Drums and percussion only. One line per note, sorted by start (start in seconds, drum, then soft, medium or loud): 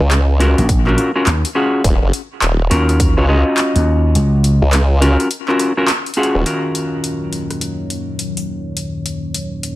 0.11 clap loud
0.11 closed hi-hat medium
0.40 closed hi-hat medium
0.58 cross-stick soft
0.58 closed hi-hat soft
0.69 kick loud
0.69 closed hi-hat medium
0.87 clap soft
0.98 cross-stick soft
0.98 closed hi-hat medium
1.27 clap loud
1.27 closed hi-hat medium
1.45 closed hi-hat medium
1.84 kick loud
1.84 closed hi-hat medium
2.13 closed hi-hat medium
2.42 clap loud
2.42 closed hi-hat medium
2.71 closed hi-hat medium
2.89 cross-stick soft
2.89 closed hi-hat soft
3.00 kick loud
3.00 closed hi-hat medium
3.58 clap loud
3.58 closed hi-hat medium
3.76 closed hi-hat medium
4.15 closed hi-hat medium
4.44 closed hi-hat medium
4.73 clap loud
4.73 closed hi-hat medium
5.02 closed hi-hat medium
5.20 cross-stick soft
5.20 closed hi-hat soft
5.31 closed hi-hat medium
5.49 clap soft
5.59 cross-stick soft
5.59 closed hi-hat medium
5.88 clap loud
5.88 closed hi-hat medium
6.06 closed hi-hat soft
6.14 closed hi-hat soft
6.23 closed hi-hat soft
6.46 closed hi-hat medium
6.75 closed hi-hat medium
7.04 closed hi-hat medium
7.33 closed hi-hat medium
7.50 cross-stick soft
7.50 closed hi-hat soft
7.61 closed hi-hat medium
7.90 closed hi-hat medium
8.19 closed hi-hat medium
8.37 closed hi-hat medium
8.77 closed hi-hat medium
9.06 closed hi-hat medium
9.34 closed hi-hat medium
9.63 closed hi-hat medium